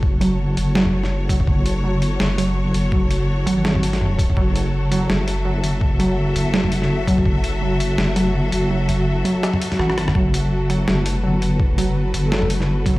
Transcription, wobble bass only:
X:1
M:4/4
L:1/8
Q:"Swing 16ths" 1/4=166
K:F#m
V:1 name="Wobble bass" clef=bass
F,,,3 F,,,4- F,,, | F,,,4 F,,,3 F,,,- | F,,,3 G,,,4- G,,, | F,,,4 F,,,3 F,,,- |
F,,,3 F,,,4- F,,, | F,,,4 F,,,3 F,,,- | F,,,3 z3 G,,,2 | F,,,4 F,,,3 F,,,- |
F,,,3 F,,,4- F,,, |]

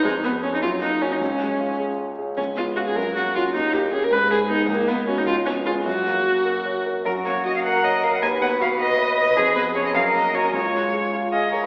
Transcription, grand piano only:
X:1
M:6/8
L:1/8
Q:3/8=103
K:F#
V:1 name="Grand piano"
E,, B, [CG] F,, A, [CF] | C,, G, E G c G | C,, B, [CE] F,, A, [CF] | D,, A, [C=G] ^G,, G, [B,^G] |
C,, A, [CF] C,, B, [CG] | F,, A, F A c A | F,, A, F A c A | D,, B, F B d B |
E,, B, [CG] F,, A, [CF] | C,, G, G E e G |]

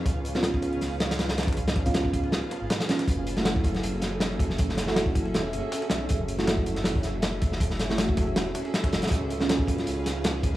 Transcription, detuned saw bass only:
X:1
M:4/4
L:1/16
Q:"Swing 16ths" 1/4=159
K:F#m
V:1 name="Detuned saw bass" clef=bass
C,,8 C,, C,, C,,6 | C,,8 z3 G,,, z4 | F,,,8 F,,, F,,, F,,,6 | F,,,8 E,,,2 F,,, z3 B,,,2 |
F,,,8 F,,, F,,, F,,,6 | F,,,8 E,,,2 z4 F,,, z | C,,8 C,, C,, C,,6 |]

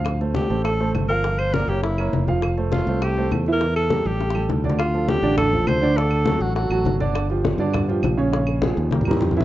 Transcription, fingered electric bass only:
X:1
M:4/4
L:1/8
Q:1/4=203
K:F
V:1 name="Fingered electric bass" clef=bass
D,,3 A,,,3 G,,,2- | G,,,3 _G,,,3 F,,,2- | F,,,3 C,,3 E,,2- | E,,3 A,,,3 D,,2- |
[K:Dm] D,,3 A,,,3 D,,2- | D,,3 A,,,2 A,,, G,,,2- | G,,,3 G,,3 B,,,2- | B,,,3 _E,,2 E,, F,,2 |]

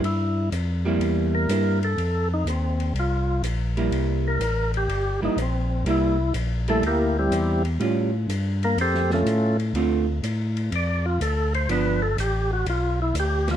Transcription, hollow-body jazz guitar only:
X:1
M:4/4
L:1/8
Q:"Swing" 1/4=124
K:Cmix
V:1 name="Hollow-body jazz guitar"
z3 [G,B,E]3 [G,B,E] z | z6 z [G,B,E]- | [G,B,E]2 z3 [G,B,E] z2 | [G,B,E] z2 [G,B,E] z4 |
[G,^C^E] z6 z | [D,A,CF] z6 z | [F,=B,D] z6 z |]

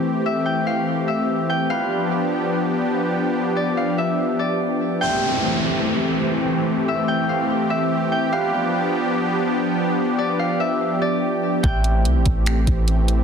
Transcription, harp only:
X:1
M:4/4
L:1/8
Q:1/4=145
K:Am
V:1 name="Harp"
z e g f2 e2 g | f4 z4 | z d f e2 d z2 | g4 z4 |
z e g f2 e2 g | f4 z4 | z d f e2 d z2 | g4 z4 |]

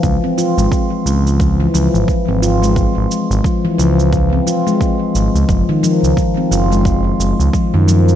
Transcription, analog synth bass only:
X:1
M:4/4
L:1/16
Q:"Swing 16ths" 1/4=88
K:Dblyd
V:1 name="Analog synth bass" clef=bass
D,, z2 A,,, z2 D,,4 D,, A,,, z A,,,3- | A,,, A,,, z A,,, z2 D,,4 z4 A,,, D,, | _G,,, z2 D,, z2 G,,,4 G,,, D,, z _G,,3 |]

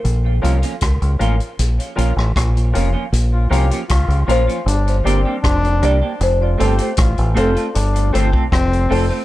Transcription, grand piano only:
X:1
M:4/4
L:1/16
Q:1/4=78
K:Bblyd
V:1 name="Grand piano"
z2 [FB_df] z3 [FBdf] z2 [df] [FBdf] z3 [FBdf] z | z2 [FB_df] z3 [FBdf] z3 [=DGB=d] z2 [Bd] [DGBd] z | z2 [CFAc] z3 [CFAc] z3 [CFAc] z2 [Ac] [CFAc] z |]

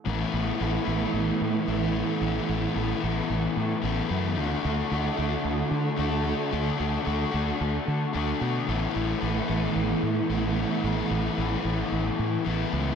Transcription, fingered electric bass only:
X:1
M:4/4
L:1/8
Q:1/4=111
K:Dlyd
V:1 name="Fingered electric bass" clef=bass
A,,, A,,, A,,, A,,, A,,, A,, A,,,2 | A,,, A,,, A,,, A,,, A,,, A,, A,,, F,, | D,, D,, D,, D,, D,, D, D,,2 | D,, D,, D,, D,, D,, D, D,, B,, |
A,,, A,,, A,,, A,,, A,,, A,, A,,,2 | A,,, A,,, A,,, A,,, A,,, A,, A,,, C,, |]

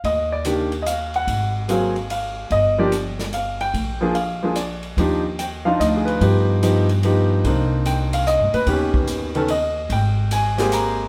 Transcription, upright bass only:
X:1
M:3/4
L:1/8
Q:"Swing" 1/4=146
K:Eb
V:1 name="Upright bass" clef=bass
E,,6 | A,,,6 | G,,,6 | B,,,6 |
E,,4 D,,2 | G,,6 | C,,4- (3C,, G,, B,, | E,,6 |
A,,,6 |]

